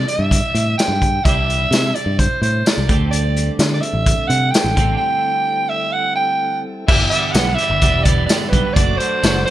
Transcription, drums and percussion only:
0.08 closed hi-hat medium
0.31 kick medium
0.31 closed hi-hat loud
0.55 closed hi-hat medium
0.79 snare loud
0.79 closed hi-hat loud
0.79 tambourine loud
1.02 kick medium
1.02 closed hi-hat medium
1.25 kick loud
1.25 closed hi-hat medium
1.50 closed hi-hat medium
1.73 snare loud
1.73 closed hi-hat loud
1.73 tambourine loud
1.96 closed hi-hat medium
2.19 kick medium
2.19 closed hi-hat medium
2.43 closed hi-hat medium
2.66 snare loud
2.66 closed hi-hat medium
2.66 tambourine loud
2.89 kick medium
2.89 closed hi-hat medium
3.13 closed hi-hat medium
3.37 closed hi-hat medium
3.59 snare loud
3.59 closed hi-hat loud
3.59 tambourine loud
3.83 closed hi-hat medium
4.06 kick medium
4.06 closed hi-hat loud
4.30 closed hi-hat medium
4.54 snare loud
4.54 closed hi-hat loud
4.54 tambourine loud
4.77 kick medium
4.77 closed hi-hat medium
6.88 kick loud
6.88 crash loud
7.12 closed hi-hat medium
7.34 snare loud
7.34 closed hi-hat loud
7.34 tambourine loud
7.58 closed hi-hat medium
7.82 kick medium
7.82 closed hi-hat medium
8.05 kick medium
8.05 closed hi-hat medium
8.29 snare loud
8.29 closed hi-hat loud
8.29 tambourine loud
8.53 kick medium
8.53 closed hi-hat medium
8.76 kick loud
8.76 closed hi-hat loud
9.00 closed hi-hat medium
9.23 snare loud
9.23 closed hi-hat loud
9.23 tambourine loud

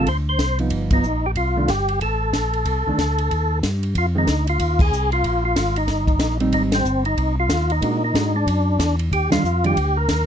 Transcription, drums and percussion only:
0.07 kick soft
0.07 ride medium
0.39 kick soft
0.39 snare medium
0.39 hi-hat pedal soft
0.39 ride soft
0.59 ride soft
0.70 kick soft
0.70 ride medium
0.91 kick medium
0.91 ride medium
1.03 hi-hat pedal soft
1.35 kick soft
1.35 ride soft
1.68 kick soft
1.68 snare soft
1.68 hi-hat pedal soft
1.68 ride medium
1.88 ride soft
2.01 kick soft
2.01 ride soft
2.33 kick soft
2.33 snare medium
2.33 hi-hat pedal soft
2.33 ride medium
2.53 ride soft
2.65 kick soft
2.65 ride medium
2.98 kick soft
2.98 snare medium
2.98 hi-hat pedal soft
2.98 ride medium
3.18 ride soft
3.31 kick soft
3.31 ride soft
3.63 kick soft
3.63 snare medium
3.63 hi-hat pedal medium
3.63 ride medium
3.83 ride soft
3.95 kick soft
3.95 ride medium
4.27 kick soft
4.27 snare medium
4.27 hi-hat pedal soft
4.27 ride medium
4.47 ride soft
4.59 kick soft
4.59 ride medium
4.79 kick medium
4.79 crash medium
4.93 hi-hat pedal medium
5.12 ride soft
5.24 kick soft
5.24 ride medium
5.56 kick soft
5.56 snare medium
5.56 hi-hat pedal medium
5.56 ride medium
5.76 ride soft
5.88 kick soft
5.88 snare soft
5.88 ride soft
6.07 kick medium
6.07 ride soft
6.19 kick soft
6.19 snare medium
6.19 hi-hat pedal medium
6.19 ride medium
6.40 ride soft
6.52 kick soft
6.52 ride medium
6.72 snare medium
6.72 ride medium
6.85 hi-hat pedal medium
7.05 ride soft
7.17 kick soft
7.17 ride medium
7.49 kick soft
7.49 snare medium
7.49 hi-hat pedal medium
7.49 ride medium
7.70 ride soft
7.82 kick soft
7.82 ride medium
8.14 kick soft
8.14 snare medium
8.14 hi-hat pedal medium
8.14 ride medium
8.47 kick soft
8.47 ride medium
8.79 kick soft
8.79 snare medium
8.79 hi-hat pedal medium
8.79 ride medium
8.99 ride soft
9.12 kick soft
9.12 ride medium
9.32 snare medium
9.32 ride medium
9.45 hi-hat pedal soft
9.64 ride soft
9.76 kick soft
9.76 ride medium
10.08 kick soft
10.08 snare medium
10.08 hi-hat pedal medium
10.08 ride medium

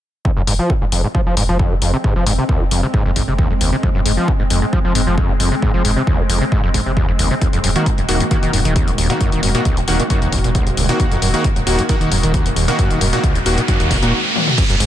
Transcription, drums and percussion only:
0.25 kick loud
0.47 open hi-hat loud
0.70 kick loud
0.92 open hi-hat loud
1.15 kick loud
1.37 open hi-hat loud
1.59 kick loud
1.82 open hi-hat loud
2.04 kick loud
2.27 open hi-hat loud
2.49 kick loud
2.71 open hi-hat loud
2.94 kick loud
3.16 kick medium
3.16 open hi-hat loud
3.39 kick loud
3.61 open hi-hat loud
3.83 kick loud
4.06 open hi-hat loud
4.28 kick loud
4.50 open hi-hat loud
4.73 kick loud
4.95 open hi-hat loud
5.18 kick loud
5.40 open hi-hat loud
5.62 kick loud
5.85 open hi-hat loud
6.07 kick loud
6.30 open hi-hat loud
6.52 kick loud
6.74 kick medium
6.74 open hi-hat loud
6.97 kick loud
7.19 open hi-hat loud
7.41 kick loud
7.41 closed hi-hat medium
7.53 closed hi-hat soft
7.64 open hi-hat loud
7.76 closed hi-hat medium
7.86 kick loud
7.86 closed hi-hat medium
7.98 closed hi-hat soft
8.09 open hi-hat loud
8.20 closed hi-hat soft
8.31 kick loud
8.31 closed hi-hat medium
8.43 closed hi-hat medium
8.53 open hi-hat loud
8.65 closed hi-hat medium
8.76 kick loud
8.76 closed hi-hat medium
8.88 closed hi-hat medium
8.98 open hi-hat loud
9.10 closed hi-hat medium
9.21 kick loud
9.21 closed hi-hat medium
9.32 closed hi-hat medium
9.43 open hi-hat loud
9.55 closed hi-hat medium
9.65 kick loud
9.65 closed hi-hat medium
9.77 closed hi-hat soft
9.88 open hi-hat loud
10.00 closed hi-hat soft
10.10 kick loud
10.10 closed hi-hat medium
10.22 closed hi-hat soft
10.32 kick medium
10.32 open hi-hat loud
10.44 closed hi-hat medium
10.55 kick loud
10.55 closed hi-hat medium
10.67 closed hi-hat medium
10.77 open hi-hat medium
10.89 closed hi-hat medium
11.00 kick loud
11.00 closed hi-hat medium
11.12 closed hi-hat soft
11.22 open hi-hat loud
11.34 closed hi-hat soft
11.44 kick loud
11.44 closed hi-hat medium
11.56 closed hi-hat soft
11.67 open hi-hat loud
11.79 closed hi-hat soft
11.89 kick loud
11.89 closed hi-hat medium
12.01 closed hi-hat medium
12.12 open hi-hat loud
12.23 closed hi-hat medium
12.34 kick loud
12.34 closed hi-hat medium
12.46 closed hi-hat medium
12.56 open hi-hat medium
12.68 closed hi-hat medium
12.79 kick loud
12.79 closed hi-hat medium
12.91 closed hi-hat medium
13.01 open hi-hat loud
13.13 closed hi-hat medium
13.24 kick loud
13.24 closed hi-hat medium
13.35 closed hi-hat medium
13.46 open hi-hat loud
13.58 closed hi-hat medium
13.68 kick loud
13.68 closed hi-hat medium
13.80 closed hi-hat medium
13.91 kick medium
13.91 open hi-hat loud
14.03 closed hi-hat medium
14.36 high tom medium
14.47 mid tom medium
14.58 kick loud
14.58 closed hi-hat loud
14.58 crash loud
14.70 closed hi-hat medium
14.80 open hi-hat loud

